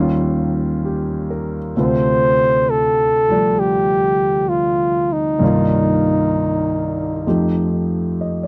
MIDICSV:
0, 0, Header, 1, 3, 480
1, 0, Start_track
1, 0, Tempo, 921659
1, 906, Time_signature, 4, 2, 24, 8
1, 4412, End_track
2, 0, Start_track
2, 0, Title_t, "Flugelhorn"
2, 0, Program_c, 0, 56
2, 936, Note_on_c, 0, 72, 96
2, 1407, Note_on_c, 0, 69, 83
2, 1415, Note_off_c, 0, 72, 0
2, 1870, Note_on_c, 0, 67, 83
2, 1878, Note_off_c, 0, 69, 0
2, 2337, Note_on_c, 0, 65, 75
2, 2345, Note_off_c, 0, 67, 0
2, 2668, Note_on_c, 0, 63, 73
2, 2676, Note_off_c, 0, 65, 0
2, 4113, Note_off_c, 0, 63, 0
2, 4412, End_track
3, 0, Start_track
3, 0, Title_t, "Grand piano"
3, 0, Program_c, 1, 0
3, 0, Note_on_c, 1, 39, 49
3, 0, Note_on_c, 1, 51, 43
3, 0, Note_on_c, 1, 55, 41
3, 0, Note_on_c, 1, 61, 45
3, 0, Note_on_c, 1, 70, 39
3, 3, Note_on_c, 1, 65, 54
3, 35, Control_c, 1, 64, 127
3, 59, Note_off_c, 1, 70, 0
3, 442, Note_on_c, 1, 67, 38
3, 679, Note_on_c, 1, 70, 40
3, 818, Note_off_c, 1, 67, 0
3, 901, Note_off_c, 1, 39, 0
3, 909, Note_off_c, 1, 51, 0
3, 912, Control_c, 1, 64, 0
3, 917, Note_off_c, 1, 55, 0
3, 919, Note_on_c, 1, 38, 42
3, 921, Note_on_c, 1, 48, 38
3, 921, Note_on_c, 1, 57, 39
3, 922, Note_off_c, 1, 65, 0
3, 926, Note_on_c, 1, 60, 36
3, 927, Note_off_c, 1, 61, 0
3, 930, Note_on_c, 1, 65, 49
3, 1001, Control_c, 1, 64, 127
3, 1011, Note_off_c, 1, 70, 0
3, 1712, Note_on_c, 1, 53, 38
3, 1714, Note_off_c, 1, 57, 0
3, 1720, Note_on_c, 1, 55, 33
3, 1721, Note_on_c, 1, 57, 35
3, 1727, Note_on_c, 1, 74, 44
3, 2806, Note_on_c, 1, 36, 51
3, 2813, Note_on_c, 1, 43, 45
3, 2817, Note_off_c, 1, 53, 0
3, 2820, Note_off_c, 1, 74, 0
3, 2820, Note_on_c, 1, 51, 46
3, 2820, Note_on_c, 1, 58, 44
3, 2821, Note_off_c, 1, 55, 0
3, 2822, Note_off_c, 1, 57, 0
3, 2823, Note_off_c, 1, 38, 0
3, 2824, Note_off_c, 1, 48, 0
3, 2824, Control_c, 1, 64, 0
3, 2827, Note_off_c, 1, 60, 0
3, 2827, Note_on_c, 1, 74, 44
3, 2828, Note_off_c, 1, 65, 0
3, 2837, Note_on_c, 1, 65, 55
3, 2931, Control_c, 1, 64, 127
3, 3773, Note_off_c, 1, 36, 0
3, 3777, Note_off_c, 1, 43, 0
3, 3780, Note_off_c, 1, 51, 0
3, 3780, Note_off_c, 1, 58, 0
3, 3784, Note_off_c, 1, 74, 0
3, 3784, Control_c, 1, 64, 0
3, 3786, Note_on_c, 1, 41, 40
3, 3787, Note_on_c, 1, 53, 38
3, 3787, Note_on_c, 1, 57, 36
3, 3789, Note_off_c, 1, 65, 0
3, 3790, Note_on_c, 1, 63, 36
3, 3790, Note_on_c, 1, 67, 44
3, 3886, Control_c, 1, 64, 127
3, 4276, Note_on_c, 1, 75, 35
3, 4392, Note_on_c, 1, 74, 38
3, 4412, Note_off_c, 1, 41, 0
3, 4412, Note_off_c, 1, 53, 0
3, 4412, Note_off_c, 1, 57, 0
3, 4412, Note_off_c, 1, 63, 0
3, 4412, Note_off_c, 1, 67, 0
3, 4412, Note_off_c, 1, 74, 0
3, 4412, Note_off_c, 1, 75, 0
3, 4412, End_track
0, 0, End_of_file